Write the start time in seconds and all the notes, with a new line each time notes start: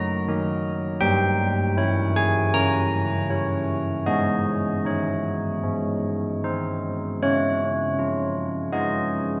Already playing: F#4
0.28 D#4 A#4
1.01 G3 G5
1.77 E4 C#5
2.16 G#5
2.54 C#4 A#5
3.30 E4 C#5
4.06 G#3 D#5
4.85 D#4 C#5
5.64 G#3
6.44 D#4 C5
7.23 C#4 C#5
7.99 F4
8.73 F4 G#4 D#5